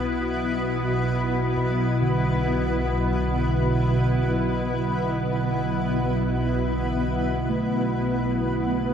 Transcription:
Already playing: B1 B2 B3 E4 B4
1.56 B2
2.02 D3
7.49 A3

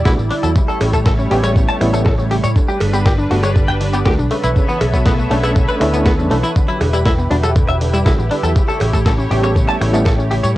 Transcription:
Already playing: G3 E4 D5
0.05 B1 D3 G3 B3 D4 E4 F#4, kick, snare, closed hi-hat, tambourine, cowbell
0.18 A1 B3, tambourine
0.31 D3 D4, open hi-hat
0.43 E2 F#3 A4, closed hi-hat, tambourine
0.56 C#3 A3 C#5, kick, closed hi-hat, tambourine
0.68 G3 A4, tambourine
0.81 A1 C#3, finger snap, open hi-hat, cowbell
0.93 A3 A4, kick, closed hi-hat, tambourine
1.06 C#3 A4, kick, snare, closed hi-hat, tambourine
1.18 C#4, tambourine
1.30 A1 C#3 G3 B3 C#4 G4, open hi-hat
1.43 G3 C#5, finger snap, closed hi-hat, tambourine, cowbell
1.56 C#3, kick, closed hi-hat, tambourine
1.68 G3 A5, tambourine
1.81 A1 C#3 G3 B3 C#4 E4, finger snap, open hi-hat
1.93 G3 A3 B3 C#4 E4 A4, closed hi-hat, tambourine
2.05 C#3 A4, kick, snare, closed hi-hat, tambourine, cowbell
2.18 C#4, tambourine
2.31 C#3 G4, open hi-hat
2.43 A2 G3 C#5, closed hi-hat, tambourine
2.56 D3 G3 D4 B4, kick, closed hi-hat, tambourine
2.68 G3 G4, tambourine
2.80 G1 D3, finger snap, open hi-hat, cowbell
2.93 B3 G4, closed hi-hat, tambourine
3.06 D3 G4, kick, snare, closed hi-hat, tambourine
3.18 D4, tambourine
3.31 G1 D3 A3 B3 D4 F#4, open hi-hat
3.43 G3 C#5, finger snap, closed hi-hat, tambourine, cowbell
3.56 D3, kick, closed hi-hat, tambourine
3.68 G1 G3 G5, tambourine
3.81 D3, open hi-hat
3.93 B3 G4, closed hi-hat, tambourine
4.05 D2 D3 A3 B3 D4 F#4 G4, kick, snare, closed hi-hat, tambourine, cowbell
4.19 B1 D4, tambourine
4.31 C#3 A3 B3 A4 B4 C#5 E5, open hi-hat
4.43 B1 E3 E4, closed hi-hat, tambourine
4.56 C#3, kick, closed hi-hat, tambourine
4.69 E3 B3, tambourine
4.81 B1 C#3, finger snap, open hi-hat, cowbell
4.93 F#3 B3, kick, closed hi-hat, tambourine
5.05 C#3 B3, kick, snare, closed hi-hat, tambourine
5.19 A3, tambourine
5.31 B1 C#3 A3 C#4 D4 A4, open hi-hat
5.43 E3 E4, finger snap, closed hi-hat, tambourine, cowbell
5.56 C#3, kick, closed hi-hat, tambourine
5.68 E3 B4, tambourine
5.80 D2 C#3 A3 C#4 D4 E4, finger snap, open hi-hat
5.93 E3 B3, closed hi-hat, tambourine
6.06 B3, kick, snare, closed hi-hat, tambourine, cowbell
6.18 E2 C#3 A3 C#4 D4 A4, tambourine
6.30 B1 E3 A3 C#4 D4 E4, open hi-hat
6.43 E3 E4, closed hi-hat, tambourine
6.56 D3 E4 G4, kick, closed hi-hat, tambourine
6.68 F#3 E4, tambourine
6.81 E1 D3, finger snap, open hi-hat, cowbell
6.93 G3 E4, closed hi-hat, tambourine
7.05 D3 E4, kick, snare, closed hi-hat, tambourine
7.18 B3, tambourine
7.30 E1 D3 G3 B3 D4 F#4, open hi-hat
7.43 F#3 A4, finger snap, closed hi-hat, tambourine, cowbell
7.56 D3, kick, closed hi-hat, tambourine
7.68 E1 F#3 E5, tambourine
7.81 D3, open hi-hat
7.93 G3 E4, closed hi-hat, tambourine
8.05 B1 D3 G3 B3 D4 E4 F#4, kick, snare, closed hi-hat, tambourine, cowbell
8.18 A1 B3, tambourine
8.31 D3 D4, open hi-hat
8.43 E2 F#3 A4, closed hi-hat, tambourine
8.56 C#3 A3 C#5, kick, closed hi-hat, tambourine
8.68 G3 A4, tambourine
8.80 A1 C#3, finger snap, open hi-hat, cowbell
8.93 A3 A4, kick, closed hi-hat, tambourine
9.06 C#3 A4, kick, snare, closed hi-hat, tambourine
9.18 C#4, tambourine
9.30 A1 C#3 G3 B3 C#4 G4, open hi-hat
9.43 G3 C#5, finger snap, closed hi-hat, tambourine, cowbell
9.55 C#3, kick, closed hi-hat, tambourine
9.68 G3 A5, tambourine
9.80 A1 C#3 G3 B3 C#4 E4, finger snap, open hi-hat
9.93 G3 A3 B3 C#4 E4 A4, closed hi-hat, tambourine
10.05 C#3 A4, kick, snare, closed hi-hat, tambourine, cowbell
10.18 C#4, tambourine
10.31 C#3 G4, open hi-hat
10.43 A2 G3 C#5, closed hi-hat, tambourine

